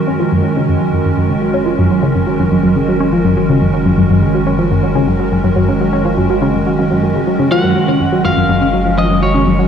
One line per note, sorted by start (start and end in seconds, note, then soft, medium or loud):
0.00 7.49 F#1 medium
0.00 9.68 D#3 medium
0.00 9.68 G#3 medium
0.00 9.68 C#4 medium
0.00 9.68 F#4 medium
0.00 9.68 A#4 medium
0.07 0.17 C#4 medium
0.20 0.29 F3 loud
0.32 0.41 F#2 loud
0.44 0.53 F#3 medium
0.57 0.66 C#3 loud
0.69 0.74 F#2 medium
0.81 0.90 F#3 medium
0.93 0.99 F#2 medium
1.05 1.11 F#2 medium
1.17 1.29 F#2 loud
1.30 1.35 C#3 medium
1.42 1.51 F#3 medium
1.54 1.63 C#4 medium
1.66 1.75 F3 medium
1.78 1.87 F#2 medium
1.91 2.00 F#3 medium
2.03 2.12 C#3 loud
2.15 2.20 F#2 medium
2.27 2.36 F#3 medium
2.39 2.45 F#2 medium
2.51 2.57 F#2 medium
2.63 2.75 F#2 medium
2.76 2.81 C#3 medium
2.88 2.97 F#3 medium
3.00 3.09 C#4 loud
3.13 3.22 F3 loud
3.25 3.34 F#2 loud
3.37 3.46 F#3 medium
3.49 3.58 C#3 medium
3.61 3.67 F#2 medium
3.74 3.83 F#3 medium
3.86 3.91 F#2 medium
3.98 4.03 F#2 loud
4.10 4.22 F#2 medium
4.22 4.28 C#3 medium
4.35 4.44 F#3 medium
4.47 4.56 C#4 loud
4.59 4.68 F3 medium
4.71 4.80 F#2 loud
4.83 4.92 F#3 medium
4.95 5.04 C#3 loud
5.07 5.13 F#2 medium
5.19 5.29 F#3 medium
5.32 5.37 F#2 medium
5.44 5.50 F#2 medium
5.56 5.68 F#2 medium
5.69 5.74 C#3 medium
5.81 5.90 F#3 medium
5.93 6.02 C#4 medium
6.05 6.14 F3 loud
6.17 6.26 F#2 loud
6.30 6.39 F#3 medium
6.42 6.51 C#3 loud
6.54 6.59 F#2 medium
6.66 6.75 F#3 medium
6.79 6.84 F#2 loud
6.91 7.02 F#2 loud
7.03 7.15 F#2 medium
7.15 7.21 C#3 medium
7.27 7.39 F#3 medium
7.39 7.48 C#3 loud
7.51 9.68 F#1 medium
7.51 7.61 F3 medium
7.51 8.25 F#5 loud
7.64 7.73 F#2 loud
7.76 7.85 F#3 medium
7.88 7.97 C#3 loud
8.00 8.06 F#2 medium
8.13 8.22 F#3 medium
8.25 8.30 F#2 medium
8.25 9.00 F5 loud
8.37 8.42 F#2 loud
8.49 8.61 F#2 medium
8.61 8.67 C#3 medium
8.73 8.83 F#3 medium
8.85 8.91 F3 medium
8.98 9.07 F3 loud
8.98 9.22 D#5 medium
9.10 9.19 F#2 medium
9.22 9.31 F#3 medium
9.22 9.68 C#5 medium
9.34 9.44 C#3 medium
9.47 9.52 F#2 medium
9.59 9.68 F#3 medium